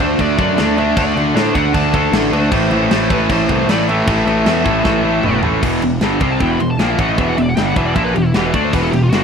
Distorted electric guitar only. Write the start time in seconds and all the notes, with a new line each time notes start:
0.01 D3 A3 D4
0.20 D3 A3 D4
0.38 D3 A3 D4
0.59 D3 A3 D4
0.78 D3 A3 D4
0.98 D3 A3 D4
1.17 D3 A3 D4
1.35 D3 A3 D4
1.55 D3 A3 D4
1.75 D3 A3 D4
1.95 D3 A3 D4
2.14 D3 A3 D4
2.32 D3 A3 D4
2.51 A2 E3 A3
2.71 A2 E3 A3
2.91 A2 E3 A3
3.10 A2 E3 A3
3.31 A2 E3 A3
3.50 A2 E3 A3
3.70 A2 E3 A3
3.89 A2 E3 A3
4.07 A2 E3 A3
4.26 A2 E3 A3
4.46 A2 E3 A3
4.64 A2 E3 A3
4.85 A2 E3 A3
5.05 A2 E3 A3
5.25 A2 E3 A3
5.44 A2 E3 A3
5.63 E2 B2 E3
5.83 E2 B2
6.02 G2 D3 G3
6.21 C3 G3 C4
6.41 E2 B2 E3
6.60 E2 B2
6.79 A#2 F3 A#3
7.00 A2 E3 A3
7.19 E2 B2 E3
7.38 E2 B2
7.57 G2 D3 G3
7.77 E2 B2 E3
7.97 A#2 F3 A#3
8.16 E2 B2
8.35 E2 B2 E3
8.55 D3 A3 D4
8.73 E2 B2 E3
8.93 E2 B2
9.13 G2 D3 G3